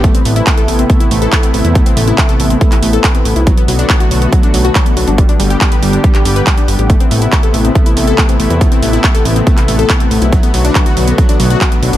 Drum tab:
HH |xxoxxxoxxxoxxxox|xxoxxxoxxxoxxxox|xxoxxxoxxxoxxxox|xxoxxxoxxxoxxxox|
CP |----x-------x---|----x----x--x---|----x-------x---|----x----x--x---|
BD |o---o---o---o---|o---o---o---o---|o---o---o---o---|o---o---o---o---|

HH |xxoxxxoxxxoxxxox|xxoxxxoxxxoxxxox|xxoxxxoxxxoxxxox|
CP |----x-------x---|----x----x--x---|----x-------x---|
BD |o---o---o---o---|o---o---o---o---|o---o---o---o---|